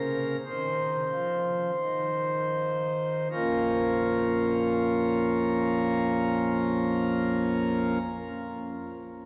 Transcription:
0, 0, Header, 1, 2, 480
1, 0, Start_track
1, 0, Key_signature, -5, "minor"
1, 0, Tempo, 1330377
1, 652, Tempo, 1526718
1, 1127, Time_signature, 4, 2, 24, 8
1, 2994, End_track
2, 0, Start_track
2, 0, Title_t, "Pipe organ"
2, 0, Program_c, 0, 19
2, 0, Note_on_c, 0, 49, 64
2, 0, Note_on_c, 0, 70, 80
2, 132, Note_off_c, 0, 49, 0
2, 132, Note_off_c, 0, 70, 0
2, 166, Note_on_c, 0, 51, 57
2, 166, Note_on_c, 0, 72, 75
2, 367, Note_off_c, 0, 51, 0
2, 402, Note_on_c, 0, 53, 62
2, 615, Note_off_c, 0, 53, 0
2, 651, Note_on_c, 0, 51, 58
2, 1114, Note_off_c, 0, 51, 0
2, 1116, Note_off_c, 0, 72, 0
2, 1124, Note_on_c, 0, 53, 42
2, 1125, Note_on_c, 0, 41, 43
2, 1126, Note_on_c, 0, 34, 52
2, 1126, Note_on_c, 0, 58, 43
2, 1126, Note_on_c, 0, 65, 49
2, 1126, Note_on_c, 0, 70, 61
2, 1127, Note_on_c, 0, 61, 44
2, 2591, Note_off_c, 0, 53, 0
2, 2592, Note_off_c, 0, 41, 0
2, 2593, Note_off_c, 0, 34, 0
2, 2593, Note_off_c, 0, 65, 0
2, 2594, Note_off_c, 0, 58, 0
2, 2594, Note_off_c, 0, 61, 0
2, 2594, Note_off_c, 0, 70, 0
2, 2994, End_track
0, 0, End_of_file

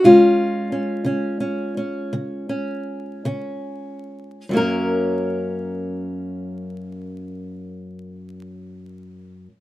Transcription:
0, 0, Header, 1, 2, 480
1, 0, Start_track
1, 0, Key_signature, 6, "major"
1, 0, Tempo, 691244
1, 26, Time_signature, 12, 3, 24, 8
1, 1467, Tempo, 767263
1, 2427, Tempo, 857143
1, 5762, End_track
2, 0, Start_track
2, 0, Title_t, "Steel-string acoustic guitar"
2, 0, Program_c, 0, 25
2, 30, Note_on_c, 0, 49, 70
2, 34, Note_on_c, 0, 65, 84
2, 36, Note_on_c, 0, 56, 49
2, 43, Note_on_c, 0, 61, 47
2, 446, Note_off_c, 0, 49, 0
2, 493, Note_off_c, 0, 61, 0
2, 501, Note_on_c, 0, 61, 43
2, 726, Note_on_c, 0, 49, 69
2, 727, Note_off_c, 0, 61, 0
2, 736, Note_on_c, 0, 61, 47
2, 966, Note_off_c, 0, 61, 0
2, 974, Note_on_c, 0, 61, 44
2, 1165, Note_off_c, 0, 49, 0
2, 1218, Note_off_c, 0, 61, 0
2, 1230, Note_on_c, 0, 61, 47
2, 1476, Note_on_c, 0, 49, 66
2, 1697, Note_off_c, 0, 61, 0
2, 1705, Note_on_c, 0, 61, 44
2, 1892, Note_off_c, 0, 49, 0
2, 2177, Note_off_c, 0, 61, 0
2, 2179, Note_on_c, 0, 49, 70
2, 2184, Note_on_c, 0, 61, 48
2, 2611, Note_off_c, 0, 49, 0
2, 2869, Note_off_c, 0, 61, 0
2, 2870, Note_off_c, 0, 56, 0
2, 2897, Note_off_c, 0, 65, 0
2, 2900, Note_on_c, 0, 42, 58
2, 2911, Note_on_c, 0, 54, 57
2, 2923, Note_on_c, 0, 58, 54
2, 2935, Note_on_c, 0, 61, 51
2, 2942, Note_on_c, 0, 70, 78
2, 5687, Note_off_c, 0, 42, 0
2, 5698, Note_off_c, 0, 54, 0
2, 5707, Note_off_c, 0, 70, 0
2, 5711, Note_off_c, 0, 58, 0
2, 5723, Note_off_c, 0, 61, 0
2, 5762, End_track
0, 0, End_of_file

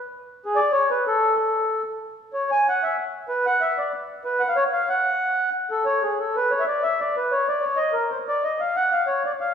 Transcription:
0, 0, Header, 1, 2, 480
1, 0, Start_track
1, 0, Key_signature, 3, "minor"
1, 0, Tempo, 321199
1, 134, Time_signature, 3, 2, 24, 8
1, 14258, End_track
2, 0, Start_track
2, 0, Title_t, "Accordion"
2, 0, Program_c, 0, 21
2, 682, Note_on_c, 0, 68, 81
2, 832, Note_on_c, 0, 74, 113
2, 900, Note_off_c, 0, 68, 0
2, 1079, Note_on_c, 0, 73, 108
2, 1081, Note_off_c, 0, 74, 0
2, 1337, Note_off_c, 0, 73, 0
2, 1354, Note_on_c, 0, 71, 87
2, 1558, Note_off_c, 0, 71, 0
2, 1601, Note_on_c, 0, 69, 102
2, 2024, Note_off_c, 0, 69, 0
2, 2047, Note_on_c, 0, 69, 73
2, 2725, Note_off_c, 0, 69, 0
2, 3488, Note_on_c, 0, 73, 75
2, 3745, Note_off_c, 0, 73, 0
2, 3757, Note_on_c, 0, 80, 111
2, 3984, Note_off_c, 0, 80, 0
2, 4016, Note_on_c, 0, 78, 90
2, 4228, Note_on_c, 0, 76, 81
2, 4247, Note_off_c, 0, 78, 0
2, 4436, Note_off_c, 0, 76, 0
2, 4910, Note_on_c, 0, 71, 81
2, 5173, Note_off_c, 0, 71, 0
2, 5176, Note_on_c, 0, 78, 120
2, 5394, Note_on_c, 0, 76, 98
2, 5410, Note_off_c, 0, 78, 0
2, 5650, Note_on_c, 0, 74, 77
2, 5654, Note_off_c, 0, 76, 0
2, 5864, Note_off_c, 0, 74, 0
2, 6343, Note_on_c, 0, 71, 74
2, 6572, Note_on_c, 0, 78, 109
2, 6605, Note_off_c, 0, 71, 0
2, 6701, Note_on_c, 0, 77, 86
2, 6707, Note_off_c, 0, 78, 0
2, 6819, Note_on_c, 0, 73, 106
2, 6828, Note_off_c, 0, 77, 0
2, 6934, Note_off_c, 0, 73, 0
2, 7062, Note_on_c, 0, 77, 92
2, 7308, Note_off_c, 0, 77, 0
2, 7312, Note_on_c, 0, 78, 103
2, 8214, Note_off_c, 0, 78, 0
2, 8530, Note_on_c, 0, 69, 80
2, 8744, Note_off_c, 0, 69, 0
2, 8746, Note_on_c, 0, 73, 91
2, 9008, Note_on_c, 0, 68, 69
2, 9010, Note_off_c, 0, 73, 0
2, 9248, Note_off_c, 0, 68, 0
2, 9255, Note_on_c, 0, 69, 60
2, 9506, Note_off_c, 0, 69, 0
2, 9508, Note_on_c, 0, 71, 91
2, 9724, Note_on_c, 0, 73, 88
2, 9738, Note_off_c, 0, 71, 0
2, 9856, Note_on_c, 0, 76, 68
2, 9917, Note_off_c, 0, 73, 0
2, 9947, Note_off_c, 0, 76, 0
2, 9973, Note_on_c, 0, 74, 76
2, 10203, Note_on_c, 0, 76, 92
2, 10213, Note_off_c, 0, 74, 0
2, 10463, Note_off_c, 0, 76, 0
2, 10467, Note_on_c, 0, 74, 81
2, 10700, Note_off_c, 0, 74, 0
2, 10708, Note_on_c, 0, 71, 77
2, 10932, Note_on_c, 0, 73, 89
2, 10954, Note_off_c, 0, 71, 0
2, 11172, Note_off_c, 0, 73, 0
2, 11175, Note_on_c, 0, 74, 85
2, 11373, Note_on_c, 0, 73, 77
2, 11427, Note_off_c, 0, 74, 0
2, 11604, Note_on_c, 0, 75, 104
2, 11632, Note_off_c, 0, 73, 0
2, 11844, Note_on_c, 0, 70, 77
2, 11882, Note_off_c, 0, 75, 0
2, 12108, Note_off_c, 0, 70, 0
2, 12114, Note_on_c, 0, 72, 62
2, 12229, Note_off_c, 0, 72, 0
2, 12378, Note_on_c, 0, 74, 99
2, 12609, Note_on_c, 0, 75, 81
2, 12613, Note_off_c, 0, 74, 0
2, 12851, Note_on_c, 0, 77, 81
2, 12863, Note_off_c, 0, 75, 0
2, 13090, Note_off_c, 0, 77, 0
2, 13098, Note_on_c, 0, 78, 111
2, 13334, Note_on_c, 0, 77, 86
2, 13348, Note_off_c, 0, 78, 0
2, 13553, Note_on_c, 0, 73, 71
2, 13573, Note_off_c, 0, 77, 0
2, 13793, Note_off_c, 0, 73, 0
2, 13831, Note_on_c, 0, 74, 77
2, 13932, Note_off_c, 0, 74, 0
2, 14052, Note_on_c, 0, 77, 85
2, 14258, Note_off_c, 0, 77, 0
2, 14258, End_track
0, 0, End_of_file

